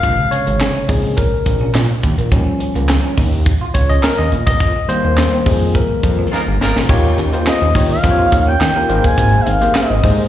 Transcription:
Already playing: tine electric piano F5
0.03 analog synth bass A#1, tine electric piano C3 C#3 G#3, kick, closed hi-hat
0.18 muted clean electric guitar stroke
0.31 clean electric guitar C#4, tine electric piano C#5, closed hi-hat
0.47 analog synth bass G#1, clean electric guitar A#3, closed hi-hat
0.60 muted clean electric guitar stroke, snare, clap, closed hi-hat
0.75 clean electric guitar C#4
0.88 analog synth bass A#1, tine electric piano C#3 G#3 C4 G#4, clean electric guitar D#4, kick, open hi-hat
1.17 clean electric guitar C#4, tine electric piano A#4, kick, closed hi-hat
1.46 analog synth bass A#1, muted clean electric guitar stroke, kick, closed hi-hat
1.61 clean electric guitar C#4
1.74 analog synth bass A#2, clean electric guitar A#3, snare, clap, closed hi-hat
2.03 analog synth bass D#2, muted clean electric guitar stroke, kick, closed hi-hat
2.18 analog synth bass A#1, clean electric guitar A#3, closed hi-hat
2.31 analog synth bass D#2, tine electric piano F3 G3 C#4, kick, closed hi-hat
2.47 muted clean electric guitar stroke
2.60 clean electric guitar C#4, closed hi-hat
2.75 analog synth bass C#2, clean electric guitar A#3, closed hi-hat
2.89 muted clean electric guitar stroke, snare, clap, closed hi-hat
3.04 clean electric guitar C#4
3.17 analog synth bass D#2, clean electric guitar D#4, kick, open hi-hat
3.46 kick, closed hi-hat
3.61 clean electric guitar F4
3.74 analog synth bass C#2, tine electric piano C#5, muted clean electric guitar stroke, kick, closed hi-hat
3.90 clean electric guitar C#4, tine electric piano D#5
4.03 tine electric piano A#4, snare, clap, closed hi-hat
4.18 analog synth bass D#2, clean electric guitar C#4, tine electric piano D#5
4.32 analog synth bass A#1, muted clean electric guitar stroke, closed hi-hat
4.47 analog synth bass C2, clean electric guitar A#3, tine electric piano D#5, kick, closed hi-hat
4.60 analog synth bass F2, kick, closed hi-hat
4.76 muted clean electric guitar stroke
4.88 tine electric piano D#3 G3 A#3 C5, clean electric guitar C4, closed hi-hat
5.04 analog synth bass D#2, clean electric guitar A#3
5.17 muted clean electric guitar stroke, snare, clap, closed hi-hat
5.33 clean electric guitar C4
5.46 analog synth bass F2, clean electric guitar D#4, tine electric piano G#4, kick, open hi-hat
5.75 clean electric guitar C4, tine electric piano A#4, kick, closed hi-hat
6.03 analog synth bass F2, muted clean electric guitar stroke, kick, closed hi-hat
6.19 clean electric guitar C4
6.32 horn section A#3 D#4 F4 A#4, clean electric guitar A#3, snare
6.48 analog synth bass G1
6.60 analog synth bass G#1, horn section A#3 D#4 F4 A#4, muted clean electric guitar stroke, snare
6.76 analog synth bass A#1, clean electric guitar A#3, snare
6.89 analog synth bass D#2, tine electric piano A#3 D#4 F4 G4 C#5, kick, crash
7.04 muted clean electric guitar stroke
7.18 analog synth bass D#2, clean electric guitar C#4, closed hi-hat
7.33 tine electric piano A#3 D#4 F4 G4 C5, clean electric guitar A#3, closed hi-hat
7.46 analog synth lead D#5, muted clean electric guitar stroke, snare, clap, closed hi-hat
7.62 analog synth bass D#2, clean electric guitar C#4
7.75 analog synth bass D#3, tine electric piano A#3 D#4 F4 G4 C#5, clean electric guitar D#4, kick, open hi-hat
7.91 analog synth lead F5
8.03 analog synth bass F2, tine electric piano A#3 D#4 F4 G4 C5, kick, closed hi-hat
8.11 tine electric piano C#5
8.19 clean electric guitar F4
8.32 analog synth bass D#2, muted clean electric guitar stroke, kick, closed hi-hat
8.47 clean electric guitar C#4, analog synth lead G5
8.61 analog synth bass D#3, snare, clap, closed hi-hat
8.76 tine electric piano A#3 D#4 F4 G4 A#4, clean electric guitar C#4
8.89 analog synth bass G#1, tine electric piano A#3 D#4 G#4 A#4 C5, muted clean electric guitar stroke, closed hi-hat
8.98 analog synth lead G5
9.04 analog synth bass D#2, clean electric guitar A#3, analog synth lead G#5, kick, closed hi-hat
9.18 analog synth bass G#1, kick, closed hi-hat
9.33 muted clean electric guitar stroke
9.41 analog synth lead E5
9.46 analog synth bass G#1, clean electric guitar C4, analog synth lead F5, closed hi-hat
9.61 tine electric piano A#3 D#4 G4 G#4 C5, clean electric guitar A#3, closed hi-hat
9.75 analog synth lead D#5, snare, clap, closed hi-hat
9.90 analog synth bass G#1, clean electric guitar C4
10.03 analog synth bass G#2, tine electric piano A#3 D#4 G4 G#4 C5, clean electric guitar D#4, kick, open hi-hat

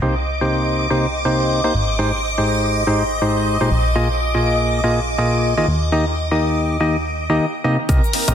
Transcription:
0.02 synth stab C3 A#3 D#4 G4 C5, string machine D#5 D6
0.41 synth stab C3 A#3 D#4 G4 C5
0.90 synth stab C3 A#3 D#4 G4 C5
1.25 synth stab C3 A#3 D#4 G4 C5
1.64 synth stab A#3 D#4 G4 C5
1.74 analog synth bass G#1
1.99 synth stab G#2 G#3 D#4 G4 C5
2.38 synth stab G#2 G#3 D#4 G4 C5
2.87 synth stab G#2 G#3 D#4 G4 C5
3.22 synth stab G#2 G#3 D#4 G4 C5
3.61 synth stab A#2 G#3 D#4 G4 C5
3.71 analog synth bass A#1
3.96 synth stab A#2 A#3 F4 G#4 D#5
4.35 synth stab A#2 A#3 F4 G#4 D#5
4.84 synth stab A#2 A#3 F4 G#4 D#5
5.18 synth stab A#2 A#3 F4 G#4 D#5
5.58 synth stab D#3 A#3 F4 G#4 D#5
5.68 analog synth bass D#2
5.92 synth stab D#3 A#3 D#4 G4 D#5
6.31 synth stab D#3 A#3 D#4 G4 D#5
6.80 synth stab D#3 A#3 D#4 G4 D#5, shaker
6.91 shaker
7.06 shaker
7.30 synth stab D#3 A#3 D#4 G4 D#5, shaker
7.64 synth stab C3 A#3 D#4 G4 D#5
7.89 analog synth bass C2, synth stab C3 C4 G4 A#4 D#5, string machine A#4 A#5, kick, closed hi-hat, shaker
8.04 shaker
8.13 open hi-hat
8.28 analog synth bass A#1, synth stab C3 C4 G4 A#4 D#5, closed hi-hat, shaker

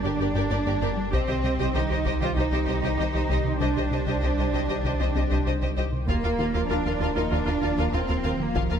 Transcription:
Already playing: sub bass G1, analog synth pad D3 G3 G4 D5, cello section D4
0.04 double bass section G1, analog synth bass G2, viola section G4, synth pluck G4, violin section A#4 D5
0.20 double bass section G1, analog synth bass G2, synth pluck G4, viola section G4, violin section A#4 D5
0.35 double bass section G1, analog synth bass G2, synth pluck G3, viola section G4, violin section A#4 D5
0.51 double bass section G1, analog synth bass G2, synth pluck A#3, viola section G4, violin section A#4 D5
0.66 double bass section G1, analog synth bass G2, synth pluck A#3, viola section G4, violin section A#4 D5
0.82 double bass section G1, analog synth bass G2, synth pluck G3, viola section G4, violin section A#4 D5
0.97 analog synth bass G3
1.12 analog synth bass C2, double bass section C2, sub bass C2, synth pluck C3, analog synth pad D#3 G3 G4 C5, cello section C4, viola section G4, violin section C5 D#5, taiko
1.28 analog synth bass C2, double bass section C2, synth pluck D#3, viola section G4, violin section C5 D#5
1.44 double bass section C2, analog synth bass C3, synth pluck G3, viola section G4, violin section C5 D#5
1.59 analog synth bass C2, double bass section C2, synth pluck C3, viola section G4, violin section C5 D#5
1.75 analog synth bass C2, double bass section C2, synth pluck D#3, cello section D#4, viola section G4, violin section C5 D#5
1.89 double bass section C2, analog synth bass C2, synth pluck D#3, viola section G4, violin section C5 D#5
2.05 double bass section C2, analog synth bass C2, synth pluck C3, viola section G4, violin section C5 D#5, taiko
2.21 double bass section C2, analog synth bass C2, synth pluck D#3, cello section F4, viola section G4, violin section C5 D#5
2.36 double bass section C2, analog synth bass C2, synth pluck C3, cello section D#4, viola section G4, violin section C5 D#5
2.52 analog synth bass C2, double bass section C2, synth pluck C4, viola section G4, violin section C5 D#5
2.67 analog synth bass C2, double bass section C2, synth pluck C4, viola section G4, violin section C5 D#5
2.83 double bass section C2, analog synth bass C2, synth pluck C3, viola section G4, violin section C5 D#5
2.98 double bass section C2, analog synth bass C2, synth pluck D#3, viola section G4, violin section C5 D#5
3.14 double bass section C2, analog synth bass C2, synth pluck D#3, viola section G4, violin section C5 D#5
3.29 double bass section C2, analog synth bass C2, synth pluck C3, viola section G4, violin section C5 D#5
3.45 analog synth bass C3
3.60 double bass section C2, analog synth bass C2, synth pluck C3, cello section D4, viola section G4, violin section C5 D#5
3.76 double bass section C2, analog synth bass C2, synth pluck D#3, viola section G4, violin section C5 D#5
3.91 double bass section C2, analog synth bass C3, synth pluck G3, viola section G4, violin section C5 D#5
4.06 analog synth bass C2, double bass section C2, synth pluck C3, viola section G4, violin section C5 D#5
4.22 analog synth bass C2, double bass section C2, synth pluck D#3, viola section G4, violin section C5 D#5
4.38 analog synth bass C2, double bass section C2, synth pluck D#3, viola section G4, violin section C5 D#5
4.53 double bass section C2, analog synth bass C2, synth pluck C3, viola section G4, violin section C5 D#5
4.69 double bass section C2, analog synth bass C2, synth pluck D#3, viola section G4, violin section C5 D#5
4.84 double bass section C2, analog synth bass C2, synth pluck C3, viola section G4, violin section C5 D#5
5.00 double bass section C2, analog synth bass C2, synth pluck C4, viola section G4, violin section C5 D#5
5.15 double bass section C2, analog synth bass C2, synth pluck C4, viola section G4, violin section C5 D#5
5.31 double bass section C2, analog synth bass C2, synth pluck C3, viola section G4, violin section C5 D#5
5.46 double bass section C2, analog synth bass C2, synth pluck D#3, viola section G4, violin section C5 D#5
5.61 double bass section C2, analog synth bass C2, synth pluck D#3, viola section G4, violin section C5 D#5
5.77 double bass section C2, analog synth bass C2, synth pluck C3, viola section G4, violin section C5 D#5
5.93 analog synth bass C3
6.07 sub bass D#1, double bass section D#2, analog synth bass D#2, synth pluck D#3, analog synth pad F3 A#3 F4 A#4, cello section A#3, viola section F4, violin section A#4 F5, taiko
6.23 double bass section D#2, analog synth bass D#2, synth pluck A#3, viola section F4, violin section A#4 F5
6.38 double bass section D#2, analog synth bass D#3, synth pluck D#4, viola section F4, violin section A#4 F5
6.53 double bass section D#2, analog synth bass D#2, synth pluck D#3, viola section F4, violin section A#4 F5
6.69 double bass section D#2, analog synth bass D#2, synth pluck A#3, cello section D4, viola section F4, violin section A#4 F5
6.85 double bass section D#2, analog synth bass D#2, synth pluck A#3, viola section F4, violin section A#4 F5
7.00 double bass section D#2, analog synth bass D#2, synth pluck D#3, viola section F4, violin section A#4 F5
7.16 double bass section D#2, analog synth bass D#2, synth pluck A#3, cello section D#4, viola section F4, violin section A#4 F5
7.30 double bass section D#2, analog synth bass D#2, synth pluck D#3, cello section D4, viola section F4, violin section A#4 F5
7.46 double bass section D#2, analog synth bass D#2, viola section F4, synth pluck F4, violin section A#4 F5
7.62 double bass section D#2, analog synth bass D#2, viola section F4, synth pluck F4, violin section A#4 F5
7.78 double bass section D#2, analog synth bass D#2, synth pluck D#3, viola section F4, violin section A#4 F5
7.94 double bass section D#2, analog synth bass D#2, synth pluck A#3, cello section C4, viola section F4, violin section A#4 F5
8.09 double bass section D#2, analog synth bass D#2, synth pluck A#3, viola section F4, violin section A#4 F5
8.24 analog synth bass D#2, double bass section D#2, synth pluck D#3, viola section F4, violin section A#4 F5
8.40 analog synth bass D#3, cello section A#3
8.55 analog synth bass D#2, double bass section D#2, synth pluck D#3, cello section F3, viola section F4, violin section A#4 F5, taiko
8.70 analog synth bass D#2, double bass section D#2, synth pluck A#3, viola section F4, violin section A#4 F5

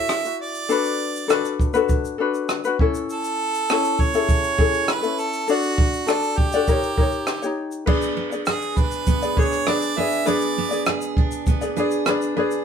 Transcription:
Already playing: ukulele E4 F#4 A4 C#5, harmonica E5
0.09 cross-stick, shaker
0.25 ukulele E4 F#4, shaker
0.41 harmonica D5
0.55 shaker
0.69 ukulele D4 F#4 A4 B4, shaker
0.85 shaker
1.16 shaker
1.28 ukulele D4 F#4 A4 B4, cross-stick, shaker
1.45 shaker
1.60 kick, shaker
1.74 ukulele D4 F#4 A4 B4, shaker
1.89 kick, shaker
2.05 shaker
2.18 ukulele D4 F#4 A4 B4
2.34 shaker
2.49 cross-stick, shaker
2.64 ukulele D4 F#4 B4, shaker
2.79 ukulele C#4 E4 A4, kick
2.94 shaker
3.10 harmonica A4, shaker
3.24 shaker
3.54 shaker
3.69 ukulele C#4 E4 A4, cross-stick, shaker
3.84 shaker
3.99 harmonica C#5, kick
4.14 ukulele C#4 E4 G#4 A4, shaker
4.29 kick, shaker
4.44 shaker
4.58 ukulele C#4 E4 G#4 A4, kick
4.74 shaker
4.88 harmonica B4, cross-stick, shaker
5.02 ukulele C#4 E4 A4, shaker
5.18 harmonica A4, shaker
5.33 shaker
5.48 ukulele D4 F#4 A4 D5, harmonica F#4, shaker
5.63 shaker
5.78 kick
5.93 shaker
6.07 ukulele D4 F#4 A4 D5, harmonica A4, cross-stick, shaker
6.23 shaker
6.38 harmonica G4, kick
6.52 ukulele D4 F#4 A4 D5, shaker
6.68 ukulele D#4 G4 A#4 C#5, kick, shaker
6.83 shaker
6.97 ukulele D#4 G4 A#4 C#5, kick
7.12 shaker
7.27 cross-stick, shaker
7.42 ukulele D#4 G4 C#5, shaker
7.72 shaker
7.86 steel-string acoustic guitar B3, ukulele D4 G#4 B4 D5, kick, crash
8.02 shaker
8.17 steel-string acoustic guitar B3
8.32 ukulele D4 G#4 D5, shaker
8.46 steel-string acoustic guitar G#4, harmonica G#4, cross-stick, shaker
8.62 shaker
8.77 steel-string acoustic guitar D4, harmonica B4, kick, shaker
8.91 shaker
9.06 steel-string acoustic guitar B3, kick, shaker
9.22 ukulele D4 G#4 D5, shaker
9.37 ukulele D4 G#4 B4, steel-string acoustic guitar G#4, harmonica C#5, kick
9.52 cross-stick, shaker
9.67 steel-string acoustic guitar D4, ukulele D4 G#4 B4 D5, harmonica D5, cross-stick, shaker
9.82 shaker
9.97 ukulele D4 G#4 B4 D5, steel-string acoustic guitar G#4, harmonica E5
10.12 shaker
10.26 steel-string acoustic guitar B3, ukulele D4 G#4 B4 D5, harmonica D5, shaker
10.41 shaker
10.58 steel-string acoustic guitar B3
10.71 ukulele D4 G#4 D5, shaker
10.86 steel-string acoustic guitar G#4, cross-stick, shaker
11.01 shaker
11.17 steel-string acoustic guitar D4, kick
11.31 shaker
11.47 steel-string acoustic guitar B3, kick, shaker
11.61 ukulele D4 G#4 D5, shaker
11.77 ukulele D4 G#4 B4 D5, steel-string acoustic guitar G#4, shaker
11.91 shaker
12.06 steel-string acoustic guitar D4, ukulele D4 G#4 B4 D5, cross-stick, shaker
12.22 shaker
12.36 ukulele D4 G#4 B4 D5, steel-string acoustic guitar G#4
12.51 shaker

